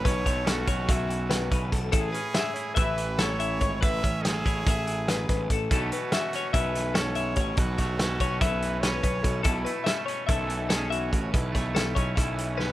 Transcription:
Already playing: E3 A3 C#4
0.05 B1 B2 B4 C#5, kick, closed hi-hat
0.26 B1 A3 C#5, kick, closed hi-hat
0.45 C#4 F#4 A4, snare, closed hi-hat
0.66 B1 C#4 C#5, kick, closed hi-hat
0.87 B1 F#2 E5, kick, closed hi-hat
1.09 E3, closed hi-hat
1.29 D#3 B4, snare, closed hi-hat
1.51 B1 C#3 B4, kick, closed hi-hat
1.72 B1 B2 A4, kick, closed hi-hat
1.92 A1 A2 G#4 A4, kick, closed hi-hat
2.13 C#4 B4, closed hi-hat
2.34 E4 E5, snare, closed hi-hat
2.54 E4 C#5, closed hi-hat
2.75 A1 E3 B4 E5, kick, closed hi-hat
2.97 E3, closed hi-hat
3.18 E4 A4 C#5, snare, closed hi-hat
3.39 E3 E5, closed hi-hat
3.59 G#1 A2 C#5, kick, closed hi-hat
3.81 A1 A2 B4 E5, kick, closed hi-hat
4.03 A1 C#4 C#5, kick, closed hi-hat
4.23 C#4 G#4 A4, snare, closed hi-hat
4.34 E4
4.45 A1 E4 C#5, kick, closed hi-hat
4.66 A1 E3 E5, kick, closed hi-hat
4.86 E3, closed hi-hat
5.07 F#2 B4, snare, closed hi-hat
5.28 A1 G#2 B4, kick, snare, closed hi-hat
5.50 A1 A2 A4, kick, closed hi-hat
5.70 B1 B2 E3 A3 C#4 F#4 A4, kick, closed hi-hat
5.92 A3 B4, closed hi-hat
6.12 C#4 E5, snare, closed hi-hat
6.33 C#4 C#5, snare, closed hi-hat
6.53 B1 F#2 B4 E5, kick, closed hi-hat
6.75 E3, snare, closed hi-hat
6.94 C#4 A4 C#5, snare, closed hi-hat
7.15 E3 E5, closed hi-hat
7.36 A1 B2 C#5, kick, closed hi-hat
7.57 B1 B2 F#4 B4, kick, closed hi-hat
7.78 B1 A3 C#5, kick, snare, closed hi-hat
7.99 A4, snare, closed hi-hat
8.03 C#4
8.20 B1 C#4 C#5, kick, closed hi-hat
8.41 B1 F#2 B4 E5, kick, closed hi-hat
8.62 E3, closed hi-hat
8.81 B4 C#5, snare, closed hi-hat
8.85 C#4
9.03 B1 E3 B4, kick, closed hi-hat
9.22 B1 B2 A4, kick, closed hi-hat
9.43 B1 B2 E4 A4, kick, closed hi-hat
9.65 A3 B4, closed hi-hat
9.84 C#4 E5, snare, closed hi-hat
10.06 C#4 C#5, closed hi-hat
10.27 B1 F#2 A4 E5, kick, closed hi-hat
10.48 E3, closed hi-hat
10.69 C#4 G#4 A4, snare, closed hi-hat
10.90 E3 F#4 E5, closed hi-hat
11.12 A1 B2 C#5, kick, closed hi-hat
11.32 B1 B2 E4 B4, kick, closed hi-hat
11.52 B1 A3 C#5, kick, snare, closed hi-hat
11.75 C#4 A4, snare, closed hi-hat
11.95 B1 C#4 C#5, kick, closed hi-hat
12.16 B1 F#2 E5, kick, snare, closed hi-hat
12.36 E3, closed hi-hat
12.52 C#5
12.57 C#4 B4, snare

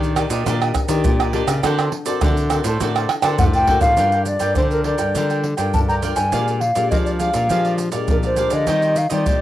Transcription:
Already playing: A#2 D#3 D4 G4 A#4 D5 D#5
0.03 pandeiro, maracas
0.16 D4 G4 A#4 D5 D#5, pandeiro, tamborim, maracas
0.30 A#2 G4 D5 D#5, pandeiro, maracas
0.46 A#2 D#3 D4 G4 A#4 D5 D#5, pandeiro, maracas, surdo
0.61 G4 D5 D#5, pandeiro, tamborim, maracas
0.74 muted cavaquinho stroke, pandeiro, tamborim, maracas, surdo
0.88 D#3 D4 G4 A#4 D5 D#5, pandeiro, maracas
1.04 A#2, pandeiro, maracas, surdo
1.20 G4 D5 D#5, pandeiro, tamborim, maracas
1.33 D4 G4 A#4 D5 D#5, pandeiro
1.47 C#3 G4 D5 D#5, pandeiro, tamborim, maracas
1.63 D3 C4 F#4 A4 A#4 C5 D5, pandeiro, tamborim, maracas, surdo
1.79 A4 C5 D5, pandeiro, tamborim, maracas
1.92 muted cavaquinho stroke, pandeiro
2.05 C4 F#4 A4 A#4 C5 D5, pandeiro, maracas
2.21 A2 D3 F#4 A4 C5 D5, pandeiro, tamborim, maracas, surdo
2.37 pandeiro, maracas
2.50 C4 F#4 A4 A#4 C5 D5, pandeiro, tamborim, maracas
2.64 A2 A4 C5 D5, pandeiro, maracas
2.80 A2 D3 C4 F#4 A4 A#4 C5 D5, pandeiro, maracas, surdo
2.96 A4 C5 D5, pandeiro, tamborim, maracas
3.09 muted cavaquinho stroke, pandeiro, tamborim
3.22 D3 C4 F#4 A4 A#4 C5 D5, pandeiro, tamborim, maracas
3.38 A2 F#5, surdo, pandeiro, maracas
3.53 A4 C5 D5 G5, pandeiro, maracas
3.67 C4 F#4 A4 A#4 C5 D5, pandeiro, surdo
3.81 A2 A4 C5 D5 F5, pandeiro, maracas, surdo
3.97 G2 G3 D4 F4 A#4 D5 G5, pandeiro, maracas, surdo
4.12 A#4 D5 G5, pandeiro, maracas
4.26 D5, muted cavaquinho stroke, pandeiro, maracas
4.40 G2 D4 F4 A#4 D5 G5, pandeiro, maracas
4.55 D3 F4 A#4 C5 D5 G5, pandeiro, maracas, surdo
4.71 A#4, pandeiro, maracas
4.84 D4 F4 A#4 D5 G5, pandeiro
4.98 G2 A#4 D5 G5, pandeiro, maracas
5.14 D3 G3 D4 F4 A#4 D5 G5, pandeiro, maracas, surdo
5.30 A#4 D5 G5, pandeiro, maracas
5.44 muted cavaquinho stroke, pandeiro
5.57 G2 D4 F4 A#4 D5 G5, pandeiro, maracas
5.74 G2 D3 A5, pandeiro, maracas, surdo
5.88 A#4 D5 G5 A#5, pandeiro, maracas
6.02 D4 F4 A#4 D5 G5, pandeiro, maracas
6.16 G2 A#4 D5 G5 G#5, pandeiro, maracas
6.32 A#2 G#3 D4 G4 G#4 A#4 D5 F5, pandeiro, maracas, surdo
6.47 A#4 D5 F5, pandeiro, maracas
6.61 F5, muted cavaquinho stroke, pandeiro
6.75 A#2 G#3 D4 G4 A#4 D5 F5, pandeiro, maracas
6.91 F3 G#4 A#4 D5 D#5 F5, pandeiro, maracas, surdo
7.05 D5, pandeiro, maracas
7.19 G#3 D4 G4 G#4 A#4 D5 F5, pandeiro, maracas
7.34 A#2 A#4 D5 F5, pandeiro, maracas
7.49 A#2 F3 G#3 D4 G4 G#4 A#4 D5 F5, pandeiro, maracas, surdo
7.65 A#4 D5 F5, pandeiro, maracas
7.78 muted cavaquinho stroke, pandeiro, maracas
7.92 A#2 G#3 D4 G4 A#4 D5 F5, pandeiro, maracas
8.08 A#2 F3 A#4, pandeiro, maracas, surdo
8.23 A#4 C5 D5 F5, pandeiro, maracas
8.36 G#3 D4 G4 G#4 A#4 D5 F5, pandeiro, maracas
8.50 D3 A#4 D5 D#5 F5, pandeiro, maracas
8.67 D#3 G3 D#4 F4 G4 C5 D#5, pandeiro, maracas, surdo
8.82 G4 C5 D#5, pandeiro, maracas
8.96 F5, muted cavaquinho stroke, pandeiro, maracas
9.10 D#3 G3 C4 F4 G4 C5 D5 D#5, pandeiro, maracas
9.26 A#2 D#4 G4 C5 D#5, pandeiro, maracas, surdo

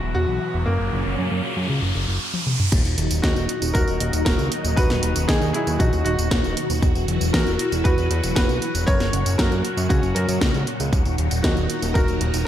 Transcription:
Already playing: B2 E3 F#3 E4 F#4, riser
0.03 E1
0.15 E1 F#4
0.28 B1
0.54 E1
0.66 F#1 A#2 C#3 F#3 A#3 C#4
0.80 F#1
0.93 F#1
1.06 F#1
1.19 F#2
1.31 F#2
1.57 F#2
1.70 C#2
1.82 F#1
1.95 F#1
2.08 F#1
2.34 high tom
2.47 mid tom
2.59 mid tom
2.72 D#1 A#2 D#3 F#3 D#4 F#4, kick, closed hi-hat, crash, tambourine
2.85 D#1, closed hi-hat, tambourine
2.98 D#1, closed hi-hat
3.11 D#1, closed hi-hat, tambourine
3.22 D#2 D#4 F#4, kick, snare, closed hi-hat, tambourine
3.36 D#1, closed hi-hat, tambourine
3.49 closed hi-hat
3.62 D#1, closed hi-hat, tambourine
3.74 D#1 F#4 A#4, kick, closed hi-hat, tambourine
3.88 D#1, closed hi-hat, tambourine
4.00 D#1, closed hi-hat
4.13 D#1, closed hi-hat, tambourine
4.25 D#1 F#4 A#4, kick, snare, closed hi-hat, tambourine
4.39 C#2, closed hi-hat, tambourine
4.52 closed hi-hat
4.65 D#1, closed hi-hat, tambourine
4.76 D#1 B2 F#4 B4, kick, closed hi-hat, tambourine
4.90 D#1, snare, closed hi-hat, tambourine
5.03 D#1, closed hi-hat
5.16 D#1, closed hi-hat, tambourine
5.28 D#2 D#4 G#4, kick, snare, closed hi-hat, tambourine
5.42 D#2, closed hi-hat, tambourine
5.53 E4 G#4, closed hi-hat
5.67 D#2, closed hi-hat, tambourine
5.79 A#1 D#4 F#4, kick, closed hi-hat, tambourine
5.93 D#1, closed hi-hat, tambourine
6.04 D#1 D#4 F#4, closed hi-hat
6.18 D#1, closed hi-hat, tambourine
6.31 D#1, kick, snare, closed hi-hat, tambourine
6.44 D#1, closed hi-hat, tambourine
6.57 closed hi-hat
6.70 D#1, closed hi-hat, tambourine
6.82 E1 E3 F#3 E4, kick, closed hi-hat, tambourine
6.95 E1, closed hi-hat, tambourine
7.08 E1, closed hi-hat
7.21 E1, closed hi-hat, tambourine
7.33 E2 F#4 A#4, kick, snare, closed hi-hat, tambourine
7.47 E1, closed hi-hat, tambourine
7.59 closed hi-hat
7.72 E1, closed hi-hat, tambourine
7.84 E1 F#4 B4, kick, closed hi-hat, tambourine
7.98 E1, closed hi-hat, tambourine
8.11 E1, closed hi-hat
8.23 E1, closed hi-hat, tambourine
8.36 E1 F#4 B4, kick, snare, closed hi-hat, tambourine
8.49 B1, closed hi-hat, tambourine
8.62 closed hi-hat
8.74 E1, closed hi-hat, tambourine
8.87 F#1 A#2 C#3 C#4 A#4 C#5, kick, closed hi-hat, tambourine
9.00 F#1, snare, closed hi-hat, tambourine
9.13 F#1, closed hi-hat
9.26 F#1, closed hi-hat, tambourine
9.38 F#2 F#4 A#4, kick, snare, closed hi-hat, tambourine
9.51 F#2, closed hi-hat, tambourine
9.65 closed hi-hat
9.77 F#2, closed hi-hat, tambourine
9.89 C#2 C#4 F#4, kick, closed hi-hat, tambourine
10.03 F#1, closed hi-hat, tambourine
10.15 F#2 F#4 A#4, closed hi-hat
10.29 F#2, closed hi-hat, tambourine
10.41 C#2, kick, snare, closed hi-hat, tambourine
10.54 C#2, closed hi-hat, tambourine
10.67 closed hi-hat
10.80 C#2, closed hi-hat, tambourine
10.93 D#1 D#3 D#4, kick, closed hi-hat, tambourine
11.05 D#1, closed hi-hat, tambourine
11.18 D#1, closed hi-hat
11.31 D#1, closed hi-hat, tambourine
11.43 D#2 D#4 F#4, kick, snare, closed hi-hat, tambourine
11.57 D#1, closed hi-hat, tambourine
11.70 closed hi-hat
11.82 D#1, closed hi-hat, tambourine
11.94 D#1 F#4 A#4, kick, closed hi-hat, tambourine
12.08 D#1, closed hi-hat, tambourine
12.21 D#1, closed hi-hat
12.34 D#1, closed hi-hat, tambourine

